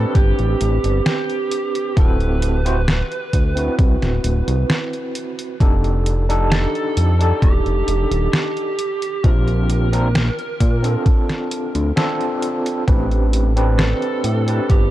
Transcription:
Already playing: tine electric piano C4 D4 G4 B4, lead electric guitar A4
0.15 analog synth bass G1, lead electric guitar G4, kick, closed hi-hat
0.39 analog synth bass A1, closed hi-hat
0.61 analog synth bass A1, closed hi-hat
0.84 analog synth bass G1, closed hi-hat
1.06 lead electric guitar G4, snare, closed hi-hat
1.30 closed hi-hat
1.51 closed hi-hat
1.75 closed hi-hat
1.96 analog synth bass D1, tine electric piano C4 E4 F#4 A4, lead electric guitar B4, kick, closed hi-hat
2.20 closed hi-hat
2.42 closed hi-hat
2.65 tine electric piano C4 E4 F#4 C5, closed hi-hat
2.88 snare, closed hi-hat
3.12 closed hi-hat
3.33 analog synth bass D2, kick, closed hi-hat
3.55 tine electric piano C4 E4 F#4 B4, closed hi-hat
3.79 analog synth bass C2, kick, closed hi-hat
4.02 analog synth bass D1, snare, closed hi-hat
4.24 analog synth bass D1, closed hi-hat
4.48 analog synth bass C2, closed hi-hat
4.70 snare, closed hi-hat
4.93 closed hi-hat
5.15 closed hi-hat
5.39 closed hi-hat
5.60 analog synth bass F1, tine electric piano D4 D#4 G4 A4, kick, closed hi-hat
5.84 closed hi-hat
6.06 closed hi-hat
6.29 tine electric piano D4 D#4 G4 A4, closed hi-hat
6.52 lead electric guitar A4, snare, closed hi-hat
6.75 closed hi-hat
6.97 analog synth bass F2, closed hi-hat
7.19 tine electric piano D4 D#4 G4 A4, closed hi-hat
7.42 analog synth bass D#1, lead electric guitar G4, kick, closed hi-hat
7.66 analog synth bass F1, closed hi-hat
7.88 analog synth bass F1, closed hi-hat
8.11 analog synth bass D#1, closed hi-hat
8.32 lead electric guitar G4, snare, closed hi-hat
8.57 closed hi-hat
8.79 closed hi-hat
9.02 closed hi-hat
9.24 analog synth bass A#1, tine electric piano C4 D4 F4 G4, lead electric guitar A#4, kick, closed hi-hat
9.48 closed hi-hat
9.70 closed hi-hat
9.93 tine electric piano C4 D4 F4 A#4, closed hi-hat
10.15 snare, closed hi-hat
10.39 closed hi-hat
10.60 analog synth bass A#2, kick, closed hi-hat
10.83 tine electric piano C4 D4 F4 A4, closed hi-hat
11.06 kick, closed hi-hat
11.29 snare, closed hi-hat
11.51 closed hi-hat
11.75 analog synth bass D2, closed hi-hat
11.96 tine electric piano C4 D4 F4 A4, snare, closed hi-hat
12.21 closed hi-hat
12.42 closed hi-hat
12.66 closed hi-hat
12.87 analog synth bass A1, tine electric piano C4 D4 G4 B4, kick, closed hi-hat
13.11 closed hi-hat
13.33 closed hi-hat
13.56 tine electric piano C4 D4 G4 B4, closed hi-hat
13.79 lead electric guitar A4, snare, closed hi-hat
14.02 closed hi-hat
14.24 analog synth bass A2, closed hi-hat
14.46 tine electric piano C4 D4 G4 B4, closed hi-hat
14.70 analog synth bass G1, lead electric guitar G4, kick, closed hi-hat

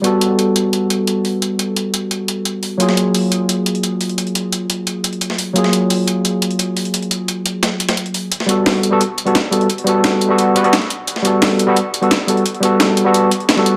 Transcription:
0.02 tine electric piano G3 B3 F#4, closed hi-hat
0.06 tine electric piano A4
0.21 closed hi-hat
0.39 closed hi-hat
0.56 closed hi-hat
0.73 closed hi-hat
0.90 closed hi-hat
1.07 closed hi-hat
1.25 open hi-hat
1.42 closed hi-hat
1.59 closed hi-hat
1.76 closed hi-hat
1.94 closed hi-hat
2.11 closed hi-hat
2.28 closed hi-hat
2.45 closed hi-hat
2.63 open hi-hat
2.78 tine electric piano F#3 A#3 F4, closed hi-hat
2.82 tine electric piano G#4
2.89 snare
2.97 closed hi-hat
3.14 closed hi-hat, open hi-hat
3.32 closed hi-hat
3.49 closed hi-hat
3.66 closed hi-hat
3.75 closed hi-hat
3.83 closed hi-hat
4.01 closed hi-hat, open hi-hat
4.09 closed hi-hat
4.18 closed hi-hat
4.27 closed hi-hat
4.35 closed hi-hat
4.52 closed hi-hat
4.70 closed hi-hat
4.87 closed hi-hat
5.04 closed hi-hat
5.13 closed hi-hat
5.21 closed hi-hat
5.30 snare
5.38 closed hi-hat, open hi-hat
5.53 tine electric piano F#3 A#3 F4, closed hi-hat
5.58 tine electric piano G#4
5.64 snare
5.73 closed hi-hat
5.90 closed hi-hat, open hi-hat
6.07 closed hi-hat
6.25 closed hi-hat
6.42 closed hi-hat
6.51 closed hi-hat
6.59 closed hi-hat
6.77 closed hi-hat, open hi-hat
6.85 closed hi-hat
6.94 closed hi-hat
7.02 closed hi-hat
7.11 closed hi-hat
7.28 closed hi-hat
7.46 closed hi-hat
7.63 snare, closed hi-hat
7.80 closed hi-hat
7.89 snare, closed hi-hat
7.97 closed hi-hat
8.06 closed hi-hat
8.14 closed hi-hat, open hi-hat
8.32 sub bass G1, closed hi-hat
8.40 snare
8.46 tine electric piano G3 B3 F#4, closed hi-hat
8.51 tine electric piano A4
8.66 snare, closed hi-hat, open hi-hat
8.83 sub bass B1, closed hi-hat
8.90 tine electric piano G3 B3 F#4 A4
9.01 closed hi-hat
9.18 closed hi-hat
9.25 tine electric piano G3 B3 F#4 A4, closed hi-hat
9.35 snare, closed hi-hat
9.51 tine electric piano G3 B3 F#4 A4, closed hi-hat
9.61 closed hi-hat
9.69 sub bass G1, closed hi-hat
9.78 closed hi-hat
9.84 tine electric piano G3 B3 F#4, closed hi-hat
9.89 tine electric piano A4
10.04 snare, closed hi-hat
10.21 sub bass B1, closed hi-hat
10.29 tine electric piano G3 B3 F#4 A4
10.38 closed hi-hat
10.55 tine electric piano G3 B3 F#4 B4, closed hi-hat
10.63 tine electric piano G3 B3 F#4 A4, closed hi-hat
10.73 snare, closed hi-hat
10.82 snare
10.90 closed hi-hat
11.07 sub bass G1, closed hi-hat
11.16 snare
11.22 tine electric piano G3 B3 F#4, closed hi-hat
11.27 tine electric piano A4
11.42 snare, closed hi-hat, open hi-hat
11.59 sub bass B1, closed hi-hat
11.67 tine electric piano G3 B3 F#4 A4
11.76 closed hi-hat
11.94 closed hi-hat
12.01 tine electric piano G3 B3 F#4 A4, closed hi-hat
12.11 snare, closed hi-hat
12.27 tine electric piano G3 B3 F#4 A4, closed hi-hat
12.37 closed hi-hat
12.45 sub bass G1, closed hi-hat
12.54 closed hi-hat
12.60 tine electric piano G3 B3 F#4, closed hi-hat
12.65 tine electric piano A4
12.80 snare, closed hi-hat
12.97 sub bass B1, closed hi-hat
13.05 tine electric piano G3 B3 F#4 A4
13.14 closed hi-hat
13.31 sub bass G1, closed hi-hat
13.40 closed hi-hat
13.49 snare, closed hi-hat
13.56 tine electric piano G3 B3 F#4 A4, snare
13.66 closed hi-hat

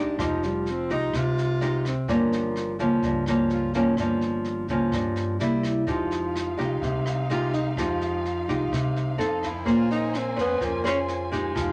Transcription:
Already playing: upright bass C2, nylon-string guitar C3 G#3 D#4 G4, tenor saxophone D4
0.18 upright bass F1, nylon-string guitar F3 G#3 D#4 G4, tenor saxophone D#4, kick, cross-stick, snare
0.43 tenor saxophone G3, snare
0.66 snare
0.70 tenor saxophone C4
0.90 upright bass C2, nylon-string guitar G#3 D#4 G4, tenor saxophone D#4, kick, snare
1.13 upright bass C2, nylon-string guitar C3, kick, cross-stick, snare
1.18 tenor saxophone F4
1.38 snare
1.61 nylon-string guitar G#3 D#4 G4, snare
1.85 tenor saxophone C4, kick, cross-stick, snare
2.08 upright bass G1, nylon-string guitar G2 F3 A#3 C#4, tenor saxophone A#3, kick, snare
2.32 snare
2.56 cross-stick, snare
2.79 upright bass C#2, nylon-string guitar F3 A#3 C#4, kick, snare
3.02 upright bass C#2, nylon-string guitar G2, kick, snare
3.26 nylon-string guitar F3 A#3 C#4, cross-stick, snare
3.50 tenor saxophone F4, snare
3.73 nylon-string guitar F3 A#3 C#4, tenor saxophone C#4, kick, snare
3.97 upright bass G1, nylon-string guitar G2 F3 A#3 C#4, kick, cross-stick, snare
4.21 snare
4.44 snare
4.68 upright bass C#2, nylon-string guitar F3 A#3 C#4, kick, snare
4.92 upright bass G2, nylon-string guitar G2, kick, cross-stick, snare
5.16 snare
5.39 upright bass C2, nylon-string guitar G3 A#3 E4, tenor saxophone E4, snare
5.63 tenor saxophone C4, kick, cross-stick, snare
5.86 upright bass F2, nylon-string guitar F3 G#3 D#4 G4, string section D#4 G4 F5, kick, snare
6.11 snare
6.36 cross-stick, snare
6.58 upright bass C2, nylon-string guitar G#3 D#4 G4, kick, snare
6.82 upright bass C2, nylon-string guitar C3, kick, snare
7.06 cross-stick, snare
7.30 nylon-string guitar G#3 D#4 G4, tenor saxophone F4, snare
7.53 tenor saxophone D#4, kick, snare
7.77 upright bass F2, nylon-string guitar F3 G#3 D#4 G4, kick, cross-stick, snare
8.01 snare
8.25 snare
8.48 upright bass C2, nylon-string guitar G#3 D#4 G4, kick, snare
8.72 upright bass C2, nylon-string guitar C3, kick, cross-stick, snare
8.96 snare
9.18 upright bass F2, nylon-string guitar C4 D#4 A4, string section D#4 A4 C5, snare
9.42 tenor saxophone E4, kick, cross-stick, snare
9.65 upright bass A#1, nylon-string guitar A#3 C#4 G#4 C5, string section C#4 A#4 G#5, kick, snare
9.70 tenor saxophone F4
9.91 tenor saxophone D#4, snare
10.14 tenor saxophone C4, cross-stick, snare
10.36 upright bass F2, tenor saxophone B3, nylon-string guitar C#4 G#4 C5, kick, snare
10.61 upright bass F2, nylon-string guitar F3, kick, snare
10.65 tenor saxophone A#3
10.84 nylon-string guitar C#4 G#4 C5, tenor saxophone C#4, cross-stick, snare
11.08 snare
11.32 nylon-string guitar G#3 D#4 G4, kick, snare
11.55 upright bass F1, nylon-string guitar F3, string section D#4 F5 G5, kick, cross-stick, snare

